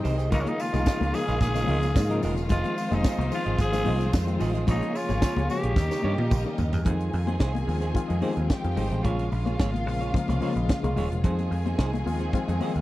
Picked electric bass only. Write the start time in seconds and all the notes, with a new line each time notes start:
0.05 C2
0.32 C#2
0.74 C2
1.01 C#2
1.29 A#1
1.41 A#1
1.68 C#2
1.96 G#2
2.24 E1
2.50 F1
2.92 F1
3.19 C2
3.46 G#1
3.58 G#1
3.87 C2
4.14 F2
4.41 A1
4.68 A#1
5.10 G#1
5.37 C#2
5.64 A#1
5.76 D#2
6.04 G2
6.19 A#2
6.31 A#1
6.59 D#2
6.74 E2
6.86 F2
7.14 F2
7.40 C2
7.68 D#2
8.10 F2
8.37 D#2
8.65 F2
8.77 G#1
8.91 A1
9.05 A#1
9.32 A#1
9.60 G#1
9.87 A#1
10.29 C2
10.56 A#1
10.84 C2
10.97 D#1
11.11 E1
11.24 F2
11.51 F2
11.79 C2
12.06 D#2
12.48 F2
12.76 D#2